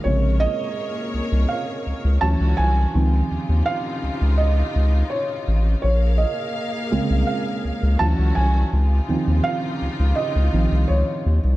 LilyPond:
<<
  \new Staff \with { instrumentName = "String section" } { \time 4/4 \key bes \minor \tempo 4 = 83 <bes aes' bes' des''>2. <d cis' e' fis'>4 | <c des ees' f'>1 | <bes aes' bes' f''>2. <d cis' e' fis'>4 | <c des ees' f'>1 | }
  \new Staff \with { instrumentName = "Felt piano" } { \time 4/4 \key bes \minor des''8 ees''4 r8 f''4 a''8 aes''8~ | aes''8 r8 f''4 ees''4 des''8. r16 | des''8 ees''4 r8 f''4 a''8 aes''8~ | aes''8 r8 f''4 ees''4 des''8. r16 | }
  \new Staff \with { instrumentName = "Felt piano" } { \clef bass \time 4/4 \key bes \minor <c des aes>4. r4. <e fis cis'>8 r8 | <ees f c'>4. r2 r8 | r4. <des aes c'>8 r4 <e fis cis'>8 r8 | r8 <ees f c'>8 r4. <ees f c'>8 r4 | }
  \new Staff \with { instrumentName = "Sub bass" } { \clef bass \time 4/4 \key bes \minor bes,,8. r8. c,16 c,16 r8 des,16 des,16 d,16 cis,16 c,8 | des,8 ees,16 ees,16 r8 des,16 des,8. des,8 r8 a,,8 | bes,,8. r8. c,16 c,16 r8 des,16 des,16 d,16 cis,16 c,8 | des,8 ees,16 ees,16 r8 des,16 des,16 r16 des,16 bes,,16 c,16 des,16 r16 ees,16 c,16 | }
>>